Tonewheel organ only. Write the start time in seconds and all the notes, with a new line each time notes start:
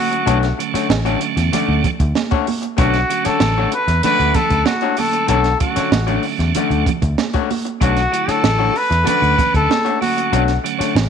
Already playing: D3 F#3 A3 C#4
0.59 D3 F#3 A3 C#4
1.06 D3 F#3 A3 C#4
2.78 D3 F#3 A3 C#4
3.09 D3 F#3 A3 C#4
4.03 C#3 F#3 A3 C#4
4.10 D3
4.97 D3 F#3 A3 C#4
5.60 D3 F#3 A3 C#4
6.07 D3 F#3 A3 C#4
7.80 D3 F#3 A3 C#4
8.12 D3 F#3 A3 E4
9.06 D3 F#3 A3 C#4
10.01 D3 F#3 A3 C#4
10.64 D3 F#3 A3 C#4